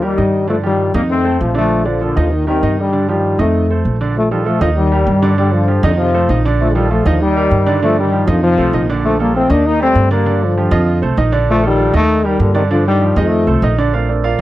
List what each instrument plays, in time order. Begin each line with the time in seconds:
Already playing: upright bass D#2
0.02 trombone section D#3 G3, grand piano G3 G4 A#4
0.17 upright bass G2, grand piano D#3 D#4 D#5
0.47 grand piano D3 D4 D5, trombone section F3 A3
0.63 trombone section D#3 G3, grand piano F3 F4 G4
0.94 upright bass F2, grand piano D#3 D#4 D#5, trombone section G3 A#3
1.10 trombone section A3 C4
1.24 grand piano A3 A4 C5
1.41 upright bass A#1, trombone section C3 F3
1.54 grand piano D3 D4 D5, trombone section F3 A3
1.85 grand piano D3 D4 D5, trombone section D3 F3
2.01 trombone section A#2 D3, grand piano F3 F4 A4
2.16 upright bass D#2, trombone section D3 F3, grand piano D#3 D#4 D#5
2.33 trombone section A#2 D#3
2.47 trombone section C3 D#3, grand piano G3 G4 A#4
2.63 upright bass G2, grand piano D#3 D#4 D#5
2.79 trombone section D3 G3
2.93 grand piano D3 D4 D5
3.09 trombone section D#3 G3, grand piano F3 F4 G4
3.38 upright bass F2, grand piano D#3 D#4 D#5, trombone section F3 A3
3.70 grand piano A3 A4 C5
3.85 upright bass A#1
4.01 grand piano D3 D4 D5
4.16 trombone section F3 A3
4.31 trombone section D#3 G3, grand piano F3 F4 A4
4.45 grand piano F3 F4 A4, trombone section F3 A3
4.61 upright bass D#2, trombone section D3 F3, grand piano D#3 D#4 D#5
4.77 trombone section D#3 G3
4.92 grand piano G3 G4 A#4
5.07 upright bass G2
5.22 grand piano D3 D4 D5
5.38 grand piano D3 D4 D5, trombone section D3 G3
5.53 trombone section D3 F3
5.68 grand piano F3 F4 G4
5.83 upright bass F2, trombone section A#2 D3, grand piano D#3 D#4 D#5
5.98 trombone section C3 F3
6.14 grand piano A3 A4 C5
6.29 upright bass A#1, grand piano D#3 D#4 D#5
6.45 grand piano D3 D4 D5
6.60 trombone section F3 A3
6.75 trombone section D#3 G3, grand piano F3 F4 A4
6.91 grand piano F3 F4 A4, trombone section F3 A3
7.05 upright bass D#2, trombone section D3 F3, grand piano D#3 D#4 D#5
7.21 trombone section D#3 G3
7.36 grand piano G3 G4 A#4
7.51 upright bass G2
7.66 grand piano D3 D4 D5
7.82 grand piano D3 D4 D5, trombone section F3 A3
7.97 trombone section D#3 G3
8.12 grand piano F3 F4 G4
8.27 upright bass F2, trombone section D3 F3, grand piano D#3 D#4 D#5
8.43 trombone section C3 F3
8.58 upright bass C2, grand piano A3 A4 C5
8.73 upright bass A#1, grand piano D#3 D#4 D#5
8.89 grand piano D3 D4 D5
9.04 trombone section F3 A3
9.19 grand piano F3 F4 A4, trombone section G3 A#3
9.34 grand piano F3 F4 A4, trombone section A3 C4
9.50 upright bass D#2, grand piano D#3 D#4 D#5, trombone section A#3 D4
9.65 trombone section A#3 D#4
9.80 grand piano G3 G4 D5, trombone section A3 C4
9.95 upright bass G2
10.10 grand piano D3 D4 D5, trombone section G3 A#3
10.26 grand piano D3 D4 D5
10.42 trombone section D3 F3
10.57 grand piano F3 F4 G4
10.71 upright bass F2, grand piano F3 F4 D#5
11.02 upright bass C2, grand piano A3 A4 C5
11.17 upright bass A#1, grand piano D#3 D#4 D#5
11.32 grand piano D3 D4 D5
11.50 trombone section F3 A3
11.63 trombone section D#3 G3, grand piano F3 F4 A4
11.78 grand piano F3 F4 A4
11.93 upright bass D#2, grand piano D#3 D#4 D#5, trombone section D#3 A3
12.24 trombone section D#3 G3, grand piano G3 G4 A#4
12.40 upright bass G2, trombone section A#2 D3
12.54 trombone section C3 D#3, grand piano D3 D4 D5
12.70 grand piano D3 D4 D5, trombone section D3 F3
12.87 trombone section D#3 G3
13.01 grand piano F3 F4 G4
13.16 upright bass F2, grand piano D#3 D#4 D#5, trombone section F3 A3
13.47 upright bass C2, grand piano A3 A4 C5
13.62 upright bass A#1, grand piano D#3 D#4 D#5
13.78 grand piano D3 D4 D5
13.93 grand piano A3 C4 D4 F4 A#4 D5 F5
14.09 grand piano D4 A4 A#4 D5
14.24 grand piano F4 A#4 D5 F5